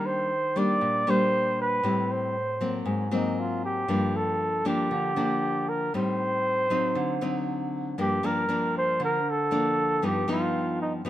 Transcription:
Already playing: nylon-string guitar D#3 G3 A#3 D4
0.06 flugelhorn C5
0.56 nylon-string guitar G3 A#3 D4, flugelhorn D5
0.81 nylon-string guitar A#2
1.07 nylon-string guitar G3 A#3 D4, flugelhorn C5
1.62 flugelhorn B4
1.83 nylon-string guitar A2 G3 C4 E4
2.12 flugelhorn C5
2.61 nylon-string guitar F#3 A#3 C4
2.85 nylon-string guitar G#2
3.11 nylon-string guitar F#3 A#3 C4, flugelhorn D#4
3.39 flugelhorn F4
3.65 flugelhorn G4
3.88 nylon-string guitar G2 F3 A#3 D4
4.16 flugelhorn A4
4.65 nylon-string guitar F3 A#3 D4, flugelhorn G4
4.91 nylon-string guitar D3
5.16 nylon-string guitar F3 A#3 D4
5.69 flugelhorn A#4
5.94 nylon-string guitar A2 G3 C4 D#4, flugelhorn C5
6.70 nylon-string guitar F#3 C4 D#4
6.95 nylon-string guitar D3
7.21 nylon-string guitar F#3 C4 D#4
7.98 nylon-string guitar G2 F3 A#3 D4, flugelhorn G4
8.23 nylon-string guitar F3 A#3 D4, flugelhorn A#4
8.49 nylon-string guitar F3 A#3 D4
8.78 flugelhorn C5
9.00 nylon-string guitar D3
9.04 flugelhorn A#4
9.30 flugelhorn A4
9.51 nylon-string guitar F3 A#3 D4
10.02 nylon-string guitar G2 F3 B3 D#4, flugelhorn G4
10.28 nylon-string guitar F3 B3 D#4
10.32 flugelhorn F4
10.82 flugelhorn D#4
11.05 nylon-string guitar F3 B3 D#4

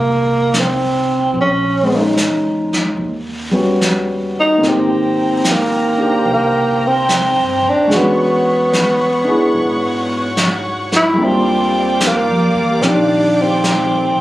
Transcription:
Already playing: upright bass C2, grand piano G3 G#3 C4 D#4, tenor saxophone A#3
0.54 snare, hi-hat pedal
0.59 tenor saxophone C4
1.34 upright bass A#1, brush sweep
1.41 tenor saxophone C#4
1.83 grand piano G#3
1.88 grand piano C#4 C5
1.95 grand piano D#4
2.15 upright bass E2, snare, hi-hat pedal
2.73 snare
2.97 upright bass D#2, brush sweep
3.51 grand piano G3 B3 C#4
3.55 grand piano F#4
3.81 snare, hi-hat pedal
4.40 tenor saxophone D#4
4.58 upright bass G#1, grand piano A#3 C4, string section A#5
4.62 grand piano D#3, string section C5 G5, brush sweep, snare
4.68 tenor saxophone C4, grand piano G4
5.44 snare, hi-hat pedal
5.51 tenor saxophone A#3
5.98 grand piano D4 G4
6.25 upright bass C2, brush sweep
6.33 tenor saxophone A#3
6.87 tenor saxophone C4
7.09 snare, hi-hat pedal
7.36 upright bass G2
7.62 upright bass D#2
7.69 tenor saxophone D4
7.87 upright bass E2, grand piano G#3 C#4 D4, string section C#5 F#5 C#6, brush sweep, snare
7.93 tenor saxophone B3, grand piano F#4
8.73 snare, hi-hat pedal
9.24 upright bass D2, grand piano D4 E4 G#4
9.54 upright bass G#2, brush sweep
10.37 snare, hi-hat pedal
10.92 tenor saxophone E4, snare
11.13 upright bass D#2, grand piano G3
11.18 grand piano A#3 D4, string section G4 D5 F5 D6, brush sweep
11.24 tenor saxophone C4, grand piano F4
12.00 snare, hi-hat pedal
12.07 tenor saxophone A#3
12.27 upright bass F2
12.54 upright bass E2
12.80 upright bass A#1, grand piano D#3 C4, tenor saxophone C#4, brush sweep, snare
12.85 tenor saxophone D4, grand piano G4
13.41 tenor saxophone C4
13.64 snare, hi-hat pedal
14.16 upright bass C#2

